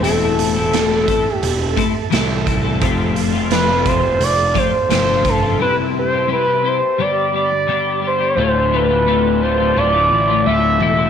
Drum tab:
HH |xxxxxxxx|xxxxxxxx|--------|--------|
SD |--o---o-|--o---o-|--------|--------|
BD |---o-o-o|o--o-o-o|--------|--------|